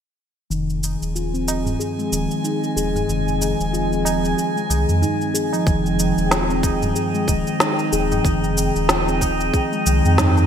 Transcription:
0.50 F1 D#3 F3 G#3 C4 G#4 G#5, cabasa
0.70 cabasa
0.83 tabla na, cabasa
1.02 D#1, cabasa
1.15 F4, cabasa
1.34 C4, cabasa
1.48 tabla na, cabasa
1.66 tabla ge, cabasa
1.80 G#4, cabasa
1.99 G#3, cabasa
2.12 D#1 D#3, tabla tin, cabasa
2.31 tabla tin, cabasa
2.44 D#4, cabasa
2.64 cabasa
2.76 D#1 G#4, cabasa
2.95 F3, tabla ge, cabasa
3.09 F1 D#3, cabasa
3.28 tabla tin, cabasa
3.42 tabla na, cabasa
3.60 D#1, cabasa
3.73 F4, cabasa
3.92 C4, cabasa
4.05 tabla na, cabasa
4.24 tabla tin, cabasa
4.37 G#4, cabasa
4.56 G#3, cabasa
4.70 C2 D#3, tabla na, cabasa
4.89 F2, cabasa
5.02 D#4, tabla ge, cabasa
5.21 cabasa
5.34 G#4, cabasa
5.53 F3, tabla na, cabasa
5.66 F1 D#3 F3 C4 D#4 G#4 D#5 G5, kick, cabasa
5.86 cabasa
5.99 tabla na, cabasa
6.18 D#1, cabasa
6.31 F4, snare, cabasa
6.50 C4, cabasa
6.63 kick, tabla na, cabasa
6.83 tabla ge, cabasa
6.96 G#4, cabasa
7.14 G#3, cabasa
7.28 D#1 D#3, kick, tabla tin, cabasa
7.47 tabla tin, cabasa
7.60 D#4, snare, cabasa
7.79 cabasa
7.93 D#1 G#4, cabasa
8.11 F3, tabla na, tabla ge, cabasa
8.25 F1 D#3, kick, cabasa
8.44 tabla tin, cabasa
8.57 tabla na, cabasa
8.76 D#1, cabasa
8.89 F4, snare, cabasa
9.08 C4, cabasa
9.21 kick, tabla na, cabasa
9.40 tabla tin, cabasa
9.54 G#4, kick, cabasa
9.72 G#3, cabasa
9.86 C2 D#3, cabasa
10.05 F2, cabasa
10.18 D#4, snare, tabla ge, cabasa
10.37 cabasa

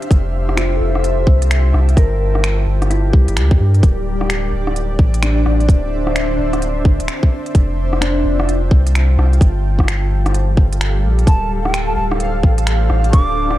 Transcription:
Already playing: D4 G4 C5 E5 F5
0.02 closed hi-hat
0.11 F1 F4, kick, closed hi-hat
0.49 cross-stick
0.57 F4 A5, finger snap, closed hi-hat
0.69 G5
0.76 A4
0.81 F1
0.90 C5
0.95 cross-stick
1.04 closed hi-hat
1.27 C2, kick
1.42 closed hi-hat
1.51 finger snap, closed hi-hat
1.74 C2, cross-stick
1.89 closed hi-hat
1.97 G1 G3 A#4, kick, closed hi-hat
2.06 G4 A#4
2.12 D5
2.35 cross-stick
2.44 finger snap, closed hi-hat
2.67 G1
2.82 cross-stick, closed hi-hat
2.90 E4, closed hi-hat
3.10 C2 G4, kick
3.28 G1, closed hi-hat
3.36 D2, finger snap, closed hi-hat
3.51 kick
3.60 G2
3.74 closed hi-hat
3.83 D1 D4, kick, closed hi-hat
3.99 E5
4.09 C5
4.21 cross-stick
4.30 finger snap, closed hi-hat
4.53 D1
4.67 cross-stick
4.76 closed hi-hat
4.99 A1, kick
5.14 closed hi-hat
5.23 D4, finger snap, closed hi-hat
5.46 A1, cross-stick
5.60 closed hi-hat
5.69 D1, kick, closed hi-hat
6.07 cross-stick
6.16 finger snap, closed hi-hat
6.39 D1
6.53 cross-stick, closed hi-hat
6.62 closed hi-hat
6.85 G1, kick
7.00 D1, closed hi-hat
7.08 finger snap, closed hi-hat
7.23 kick
7.46 closed hi-hat
7.55 F1 F4, kick, closed hi-hat
7.64 G5 A5
7.93 cross-stick
8.01 D4, finger snap, closed hi-hat
8.25 F1
8.40 cross-stick
8.49 closed hi-hat
8.71 C2, kick
8.87 closed hi-hat
8.95 finger snap, closed hi-hat
9.18 C2, cross-stick
9.33 closed hi-hat
9.41 G1 G3, kick, closed hi-hat
9.57 A4
9.61 G4 F5
9.79 kick, cross-stick
9.88 finger snap, closed hi-hat
10.11 G1
10.26 cross-stick, closed hi-hat
10.34 closed hi-hat
10.57 G1, kick
10.73 closed hi-hat
10.81 finger snap, closed hi-hat
11.03 A#1
11.19 closed hi-hat
11.27 D1 D4 A5, kick, closed hi-hat
11.39 C5
11.64 G5, cross-stick
11.70 D5, finger snap, closed hi-hat
11.87 A5
11.96 D1 A5
12.11 cross-stick
12.20 closed hi-hat
12.43 A1, kick
12.58 closed hi-hat
12.67 finger snap, closed hi-hat
12.90 A1, cross-stick
13.04 closed hi-hat
13.12 D1 D6, kick, closed hi-hat
13.51 cross-stick

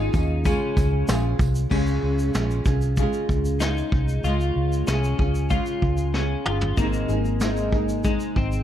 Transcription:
Already playing: G#3 C#4 D#4 F4 G#4
0.13 D#2 C#4 F4 G#4, kick, tambourine, shaker
0.45 C#3 G#3 C#4 F4 G#4, kick, tambourine, shaker
0.77 C#2, kick, tambourine, shaker
1.07 A#1 G#3 C#4 F4 G#4, snare, tambourine, shaker
1.39 C2, kick, tambourine, shaker
1.55 shaker
1.70 C#2 C#3 G#3 C#4 F4 G#4, kick, crash
1.87 shaker
2.03 C#2
2.19 shaker
2.33 A#1 G#3 C#4 F4 G#4, snare, shaker
2.51 shaker
2.65 C2 C#4 F4 G#4, kick, snare, shaker
2.81 shaker
2.97 C#3 G#3 C#4 F4 G#4, kick, shaker
3.13 shaker
3.29 C#2, kick, shaker
3.45 shaker
3.60 G#3 C#4 D#4 F4 G#4, snare, shaker
3.77 shaker
3.92 C2, kick
4.08 shaker
4.24 C#2 C#3 G#3 C#4 F4 G#4, shaker
4.40 shaker
4.56 C#2
4.73 shaker
4.87 C2 G#3 C#4 F4 G#4, snare, shaker
5.04 shaker
5.18 C#2 C#4 F4 G#4, kick
5.35 shaker
5.50 C#3 G#3 C#4 F4 G#4, kick, shaker
5.66 shaker
5.82 C#2, kick
5.97 shaker
6.14 G#3 C#4 F4 G#4, snare
6.46 G1 C#4 F4 G#4, mid tom
6.61 floor tom
6.77 G#1 G#2 D#3 G#3 A#3 C4 D#4 G#4, kick, shaker
6.93 shaker
7.08 G#1 G#3 C4 D#4 G#4, shaker
7.25 shaker
7.40 G#2 D#3 G#3 C4 D#4 G#4, snare, shaker
7.57 shaker
7.71 G#3 C4 D#4 G#4, kick
7.89 shaker
8.03 G#3 C4 D#4 G#4, kick, shaker
8.20 shaker
8.36 G#1 C4, kick
8.52 shaker

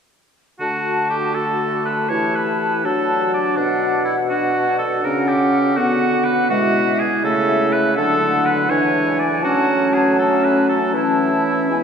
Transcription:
0.59 D3 A3 F#4 A5
1.10 G4
1.34 F#4 A4 A5
1.85 B4
2.09 E3 E4 G4 C#5 A5
2.36 B4
2.84 F#3 D4 F#4 A4 A5
3.34 D5
3.57 B2 D4 F#5
4.05 E4
4.29 D4 F#4 F#5
4.78 A4
5.03 C#3 C#4 A#4 F#5
5.28 G4
5.77 D3 B3 F#4 F#5
6.24 B4
6.50 B2 G#3 E4 F#4 E5
7.00 G#4
7.23 C#3 A3 A4 E5
7.72 B4
7.95 D3 F#3 D4 A4 F#5
8.46 B4
8.69 E3 G#3 D4 C#5 G#5
9.19 D5
9.43 F#3 A3 C#4 F#4 A5
9.94 G#4
10.19 C#4 A4 A5
10.44 B4
10.69 A4
10.94 E3 C#4 E4 A5
11.45 A5
11.69 G#3 B3 E4 G#5

